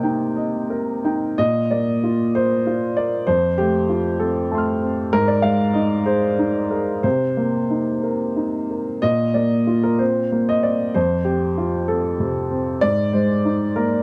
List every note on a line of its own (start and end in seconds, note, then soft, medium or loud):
0.00 1.33 C3 medium
0.00 0.23 A#3 soft
0.00 0.56 D#4 soft
0.00 0.23 D#5 soft
0.00 0.03 G5 medium
0.00 0.56 G5 soft
0.36 0.90 D#5 soft
0.70 1.24 A#4 soft
1.05 1.37 D#4 soft
1.05 1.38 G5 soft
1.38 3.24 A#2 soft
1.38 1.70 D#5 medium
1.71 2.22 A#3 soft
1.71 2.35 D5 medium
2.04 2.54 F4 soft
2.35 2.85 A#4 soft
2.35 2.97 C5 medium
2.67 3.16 F4 soft
2.97 3.28 A#4 soft
2.97 3.27 D5 medium
3.27 5.08 F2 medium
3.27 3.58 C5 medium
3.58 4.08 A3 soft
3.58 4.19 G4 medium
3.89 4.38 F4 soft
4.20 4.69 C4 soft
4.20 5.12 A4 medium
4.52 5.00 A3 soft
4.52 5.09 A5 soft
4.52 5.10 C6 soft
4.58 5.12 F6 soft
4.83 5.13 C4 soft
5.13 7.01 G#2 medium
5.13 5.28 A#4 loud
5.28 5.43 D5 medium
5.42 5.93 G#3 soft
5.42 5.74 F5 medium
5.73 6.25 D#4 soft
5.73 6.05 D#5 medium
6.06 6.58 G#4 soft
6.06 6.71 C5 medium
6.39 6.91 D#4 soft
6.71 7.05 G#4 soft
6.71 7.04 A#4 medium
7.03 8.99 C3 medium
7.03 8.70 C5 medium
7.37 7.90 A#3 soft
7.70 8.24 D#4 soft
8.03 8.57 A#4 soft
8.37 8.90 D#4 soft
8.70 9.03 A#4 soft
9.02 10.91 A#2 medium
9.02 9.35 D#5 medium
9.34 9.87 A#3 soft
9.34 9.83 D5 medium
9.67 10.19 F4 soft
9.83 10.00 A#4 medium
9.99 10.51 C4 soft
9.99 10.47 C5 medium
10.32 10.83 A#3 soft
10.49 10.64 D#5 medium
10.63 10.95 C4 soft
10.63 10.95 D5 medium
10.94 12.78 F2 medium
10.94 11.26 C5 medium
11.25 11.77 C4 soft
11.25 11.88 G4 medium
11.58 12.08 F4 soft
11.88 12.39 C4 soft
11.88 12.82 A4 medium
12.20 12.70 C3 soft
12.51 12.82 C4 soft
12.81 14.03 G#2 medium
12.81 13.13 D5 medium
13.13 13.64 G#3 soft
13.13 13.76 C5 medium
13.45 13.96 D#4 soft
13.76 14.03 A#3 soft
13.76 14.03 A#4 medium